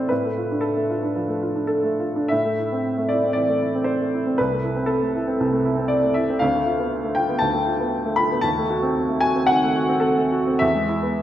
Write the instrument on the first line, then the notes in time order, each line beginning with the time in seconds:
upright piano
Already playing: E3 A3 C4 E4 C5 D5
0.09 A2 B4
0.25 A3
0.38 F4
0.51 D4
0.61 A4
0.77 A3
0.90 F4
1.03 D4
1.16 F3
1.29 A3
1.42 F4
1.56 D4
1.67 A4
1.84 A3
2.00 F4
2.16 D4
2.28 A2 E5
2.45 A3
2.59 E4
2.72 C4
2.98 A3
3.09 E4 D5
3.23 C4
3.33 E3 D5
3.49 A3
3.62 E4
3.75 C4
3.84 C5
4.00 A3
4.14 E4
4.27 C4
4.38 C2 B4
4.53 A3
4.64 E4
4.76 C4
4.86 A4
5.03 A3
5.15 E4
5.27 C4
5.40 C2
5.52 A3
5.65 E4
5.77 C4
5.88 D5
6.04 A3
6.14 E4 E5
6.30 C4
6.39 D2 F5
6.54 A3
6.66 F4
6.79 B3
7.04 A3
7.15 F4 G5
7.29 B3
7.39 D2 A5
7.54 A3
7.67 F4
7.80 B3
8.05 A3
8.16 F4 B5
8.31 B3
8.41 D#2 A5
8.58 A3
8.70 F#4
8.83 C4
9.09 A3
9.21 F#4 G#5
9.35 C4
9.47 D#3 F#5
9.64 A3
9.76 F#4
9.89 C4
10.00 A4
10.17 A3
10.32 F#4
10.47 C4
10.59 E2 E5
10.75 G#3
10.89 E4
11.03 B3